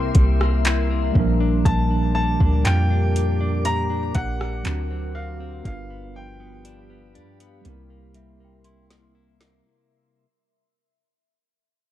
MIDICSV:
0, 0, Header, 1, 8, 480
1, 0, Start_track
1, 0, Tempo, 1000000
1, 794, Time_signature, 4, 2, 24, 8
1, 5721, End_track
2, 0, Start_track
2, 0, Title_t, "Celesta"
2, 0, Program_c, 0, 8
2, 3912, Note_on_c, 0, 76, 72
2, 4053, Note_on_c, 0, 79, 58
2, 4150, Note_on_c, 0, 84, 77
2, 4853, Note_off_c, 0, 84, 0
2, 4854, Note_off_c, 0, 76, 0
2, 4984, Note_off_c, 0, 79, 0
2, 5721, End_track
3, 0, Start_track
3, 0, Title_t, "Grand piano"
3, 0, Program_c, 1, 0
3, 0, Note_on_c, 1, 79, 89
3, 533, Note_off_c, 1, 79, 0
3, 793, Note_on_c, 1, 81, 101
3, 1017, Note_off_c, 1, 81, 0
3, 1031, Note_on_c, 1, 81, 104
3, 1270, Note_on_c, 1, 79, 102
3, 1280, Note_off_c, 1, 81, 0
3, 1733, Note_off_c, 1, 79, 0
3, 1753, Note_on_c, 1, 82, 114
3, 1991, Note_on_c, 1, 78, 113
3, 2001, Note_off_c, 1, 82, 0
3, 2472, Note_on_c, 1, 77, 88
3, 2487, Note_off_c, 1, 78, 0
3, 2706, Note_off_c, 1, 77, 0
3, 2714, Note_on_c, 1, 77, 94
3, 2958, Note_on_c, 1, 79, 87
3, 2961, Note_off_c, 1, 77, 0
3, 4376, Note_off_c, 1, 79, 0
3, 5721, End_track
4, 0, Start_track
4, 0, Title_t, "Ambient pad"
4, 0, Program_c, 2, 92
4, 0, Note_on_c, 2, 70, 84
4, 0, Note_on_c, 2, 76, 83
4, 0, Note_on_c, 2, 84, 97
4, 538, Note_off_c, 2, 76, 0
4, 538, Note_off_c, 2, 84, 0
4, 555, Note_on_c, 2, 86, 89
4, 556, Note_on_c, 2, 67, 72
4, 2218, Note_off_c, 2, 67, 0
4, 2218, Note_off_c, 2, 86, 0
4, 2695, Note_off_c, 2, 70, 0
4, 2711, Note_on_c, 2, 83, 97
4, 2712, Note_on_c, 2, 67, 82
4, 2712, Note_on_c, 2, 77, 77
4, 3663, Note_off_c, 2, 67, 0
4, 3663, Note_off_c, 2, 77, 0
4, 3663, Note_off_c, 2, 83, 0
4, 3673, Note_on_c, 2, 70, 85
4, 3673, Note_on_c, 2, 84, 90
4, 3674, Note_on_c, 2, 76, 77
4, 4624, Note_off_c, 2, 70, 0
4, 4624, Note_off_c, 2, 76, 0
4, 4624, Note_off_c, 2, 84, 0
4, 5721, End_track
5, 0, Start_track
5, 0, Title_t, "Tine electric piano"
5, 0, Program_c, 3, 4
5, 0, Control_c, 3, 64, 127
5, 0, Note_on_c, 3, 55, 71
5, 0, Note_on_c, 3, 58, 65
5, 0, Note_on_c, 3, 60, 66
5, 0, Note_on_c, 3, 64, 69
5, 0, Note_on_c, 3, 70, 78
5, 526, Note_off_c, 3, 55, 0
5, 531, Note_off_c, 3, 58, 0
5, 535, Note_on_c, 3, 55, 86
5, 536, Note_off_c, 3, 60, 0
5, 541, Note_off_c, 3, 64, 0
5, 545, Note_off_c, 3, 70, 0
5, 545, Note_on_c, 3, 58, 83
5, 554, Note_on_c, 3, 62, 83
5, 560, Control_c, 3, 64, 0
5, 565, Note_on_c, 3, 53, 79
5, 575, Note_on_c, 3, 70, 98
5, 635, Control_c, 3, 64, 127
5, 2205, Note_off_c, 3, 55, 0
5, 2210, Note_off_c, 3, 58, 0
5, 2215, Note_off_c, 3, 62, 0
5, 2220, Note_off_c, 3, 53, 0
5, 2224, Note_on_c, 3, 54, 69
5, 2225, Note_off_c, 3, 70, 0
5, 2229, Note_on_c, 3, 60, 64
5, 2235, Note_on_c, 3, 62, 65
5, 2238, Note_on_c, 3, 66, 67
5, 2241, Control_c, 3, 64, 0
5, 2243, Note_on_c, 3, 70, 77
5, 2317, Control_c, 3, 64, 127
5, 2696, Note_on_c, 3, 55, 71
5, 2705, Note_on_c, 3, 59, 64
5, 2709, Note_off_c, 3, 54, 0
5, 2710, Note_off_c, 3, 62, 0
5, 2712, Note_off_c, 3, 60, 0
5, 2716, Note_off_c, 3, 66, 0
5, 2716, Note_on_c, 3, 62, 65
5, 2719, Note_off_c, 3, 70, 0
5, 2719, Control_c, 3, 64, 0
5, 2726, Note_on_c, 3, 65, 67
5, 2735, Note_on_c, 3, 71, 77
5, 2809, Control_c, 3, 64, 127
5, 3646, Note_off_c, 3, 55, 0
5, 3650, Note_off_c, 3, 59, 0
5, 3655, Note_on_c, 3, 55, 83
5, 3656, Note_off_c, 3, 62, 0
5, 3661, Note_off_c, 3, 65, 0
5, 3665, Note_off_c, 3, 71, 0
5, 3665, Note_on_c, 3, 58, 81
5, 3675, Note_on_c, 3, 60, 78
5, 3681, Control_c, 3, 64, 0
5, 3684, Note_on_c, 3, 64, 79
5, 3695, Note_on_c, 3, 70, 96
5, 3765, Control_c, 3, 64, 127
5, 4605, Note_off_c, 3, 55, 0
5, 4610, Note_off_c, 3, 58, 0
5, 4615, Note_off_c, 3, 60, 0
5, 4620, Note_off_c, 3, 64, 0
5, 4625, Note_off_c, 3, 70, 0
5, 4640, Control_c, 3, 64, 0
5, 5721, End_track
6, 0, Start_track
6, 0, Title_t, "Clean electric guitar"
6, 0, Program_c, 4, 27
6, 0, Note_on_c, 4, 48, 88
6, 0, Note_on_c, 4, 55, 65
6, 0, Note_on_c, 4, 58, 66
6, 0, Note_on_c, 4, 64, 73
6, 0, Note_on_c, 4, 67, 66
6, 73, Note_off_c, 4, 55, 0
6, 75, Note_on_c, 4, 55, 68
6, 193, Note_off_c, 4, 58, 0
6, 195, Note_on_c, 4, 58, 62
6, 309, Note_off_c, 4, 64, 0
6, 314, Note_off_c, 4, 67, 0
6, 314, Note_on_c, 4, 64, 73
6, 433, Note_off_c, 4, 58, 0
6, 435, Note_on_c, 4, 58, 60
6, 555, Note_on_c, 4, 46, 89
6, 602, Note_off_c, 4, 48, 0
6, 602, Note_off_c, 4, 64, 0
6, 672, Note_off_c, 4, 58, 0
6, 674, Note_on_c, 4, 62, 66
6, 789, Note_off_c, 4, 46, 0
6, 794, Note_on_c, 4, 46, 92
6, 912, Note_off_c, 4, 62, 0
6, 914, Note_on_c, 4, 62, 57
6, 1033, Note_off_c, 4, 55, 0
6, 1035, Note_on_c, 4, 55, 64
6, 1152, Note_off_c, 4, 62, 0
6, 1154, Note_on_c, 4, 62, 63
6, 1274, Note_on_c, 4, 65, 71
6, 1392, Note_off_c, 4, 62, 0
6, 1394, Note_on_c, 4, 62, 63
6, 1633, Note_off_c, 4, 62, 0
6, 1635, Note_on_c, 4, 62, 64
6, 1749, Note_off_c, 4, 46, 0
6, 1754, Note_on_c, 4, 46, 88
6, 1870, Note_off_c, 4, 62, 0
6, 1872, Note_on_c, 4, 62, 63
6, 1988, Note_off_c, 4, 55, 0
6, 1993, Note_on_c, 4, 55, 62
6, 2008, Note_off_c, 4, 65, 0
6, 2111, Note_off_c, 4, 62, 0
6, 2113, Note_on_c, 4, 62, 63
6, 2234, Note_on_c, 4, 50, 82
6, 2282, Note_off_c, 4, 46, 0
6, 2282, Note_off_c, 4, 55, 0
6, 2352, Note_off_c, 4, 62, 0
6, 2354, Note_on_c, 4, 60, 62
6, 2472, Note_on_c, 4, 66, 71
6, 2588, Note_off_c, 4, 60, 0
6, 2594, Note_on_c, 4, 60, 67
6, 2712, Note_on_c, 4, 43, 99
6, 2761, Note_off_c, 4, 66, 0
6, 2762, Note_off_c, 4, 50, 0
6, 2762, Note_off_c, 4, 60, 0
6, 2833, Note_on_c, 4, 59, 62
6, 2953, Note_on_c, 4, 53, 62
6, 3067, Note_off_c, 4, 59, 0
6, 3072, Note_on_c, 4, 59, 63
6, 3193, Note_on_c, 4, 62, 72
6, 3306, Note_off_c, 4, 59, 0
6, 3312, Note_on_c, 4, 59, 62
6, 3426, Note_off_c, 4, 62, 0
6, 3432, Note_on_c, 4, 62, 70
6, 3548, Note_off_c, 4, 59, 0
6, 3553, Note_on_c, 4, 59, 66
6, 3673, Note_on_c, 4, 48, 89
6, 3721, Note_off_c, 4, 43, 0
6, 3721, Note_off_c, 4, 53, 0
6, 3721, Note_off_c, 4, 62, 0
6, 3722, Note_off_c, 4, 59, 0
6, 3793, Note_on_c, 4, 58, 64
6, 3912, Note_on_c, 4, 55, 65
6, 4032, Note_off_c, 4, 58, 0
6, 4034, Note_on_c, 4, 58, 60
6, 4152, Note_on_c, 4, 64, 73
6, 4271, Note_off_c, 4, 58, 0
6, 4273, Note_on_c, 4, 58, 64
6, 4390, Note_off_c, 4, 64, 0
6, 4392, Note_on_c, 4, 64, 70
6, 4511, Note_off_c, 4, 58, 0
6, 4513, Note_on_c, 4, 58, 66
6, 4922, Note_off_c, 4, 48, 0
6, 4922, Note_off_c, 4, 55, 0
6, 4922, Note_off_c, 4, 58, 0
6, 4922, Note_off_c, 4, 64, 0
6, 5721, End_track
7, 0, Start_track
7, 0, Title_t, "808-style bass"
7, 0, Program_c, 5, 38
7, 0, Note_on_c, 5, 36, 102
7, 55, Note_off_c, 5, 36, 0
7, 75, Note_on_c, 5, 36, 108
7, 535, Note_off_c, 5, 36, 0
7, 555, Note_on_c, 5, 34, 110
7, 785, Note_off_c, 5, 34, 0
7, 795, Note_on_c, 5, 34, 115
7, 1140, Note_off_c, 5, 34, 0
7, 1156, Note_on_c, 5, 38, 105
7, 1270, Note_off_c, 5, 38, 0
7, 1276, Note_on_c, 5, 41, 108
7, 1976, Note_off_c, 5, 41, 0
7, 1995, Note_on_c, 5, 34, 105
7, 2225, Note_off_c, 5, 34, 0
7, 2237, Note_on_c, 5, 38, 105
7, 2696, Note_off_c, 5, 38, 0
7, 2715, Note_on_c, 5, 31, 112
7, 3436, Note_on_c, 5, 43, 100
7, 3443, Note_off_c, 5, 31, 0
7, 3663, Note_off_c, 5, 43, 0
7, 3676, Note_on_c, 5, 36, 112
7, 4616, Note_off_c, 5, 36, 0
7, 5721, End_track
8, 0, Start_track
8, 0, Title_t, "Drums"
8, 71, Note_on_c, 9, 42, 71
8, 73, Note_on_c, 9, 36, 101
8, 119, Note_off_c, 9, 42, 0
8, 121, Note_off_c, 9, 36, 0
8, 196, Note_on_c, 9, 37, 96
8, 244, Note_off_c, 9, 37, 0
8, 311, Note_on_c, 9, 42, 72
8, 316, Note_on_c, 9, 39, 117
8, 359, Note_off_c, 9, 42, 0
8, 364, Note_off_c, 9, 39, 0
8, 554, Note_on_c, 9, 36, 96
8, 602, Note_off_c, 9, 36, 0
8, 794, Note_on_c, 9, 36, 117
8, 795, Note_on_c, 9, 42, 76
8, 842, Note_off_c, 9, 36, 0
8, 843, Note_off_c, 9, 42, 0
8, 1154, Note_on_c, 9, 36, 94
8, 1202, Note_off_c, 9, 36, 0
8, 1272, Note_on_c, 9, 42, 74
8, 1277, Note_on_c, 9, 39, 103
8, 1320, Note_off_c, 9, 42, 0
8, 1325, Note_off_c, 9, 39, 0
8, 1516, Note_on_c, 9, 42, 79
8, 1564, Note_off_c, 9, 42, 0
8, 1752, Note_on_c, 9, 42, 72
8, 1800, Note_off_c, 9, 42, 0
8, 1990, Note_on_c, 9, 42, 65
8, 1993, Note_on_c, 9, 36, 103
8, 2038, Note_off_c, 9, 42, 0
8, 2041, Note_off_c, 9, 36, 0
8, 2116, Note_on_c, 9, 37, 102
8, 2164, Note_off_c, 9, 37, 0
8, 2231, Note_on_c, 9, 42, 76
8, 2236, Note_on_c, 9, 39, 127
8, 2279, Note_off_c, 9, 42, 0
8, 2284, Note_off_c, 9, 39, 0
8, 2713, Note_on_c, 9, 36, 119
8, 2714, Note_on_c, 9, 42, 73
8, 2761, Note_off_c, 9, 36, 0
8, 2762, Note_off_c, 9, 42, 0
8, 3191, Note_on_c, 9, 42, 72
8, 3239, Note_off_c, 9, 42, 0
8, 3434, Note_on_c, 9, 42, 50
8, 3482, Note_off_c, 9, 42, 0
8, 3553, Note_on_c, 9, 42, 80
8, 3601, Note_off_c, 9, 42, 0
8, 3672, Note_on_c, 9, 42, 74
8, 3720, Note_off_c, 9, 42, 0
8, 3909, Note_on_c, 9, 42, 67
8, 3957, Note_off_c, 9, 42, 0
8, 4149, Note_on_c, 9, 42, 72
8, 4197, Note_off_c, 9, 42, 0
8, 4274, Note_on_c, 9, 38, 89
8, 4322, Note_off_c, 9, 38, 0
8, 4515, Note_on_c, 9, 38, 98
8, 4563, Note_off_c, 9, 38, 0
8, 5721, End_track
0, 0, End_of_file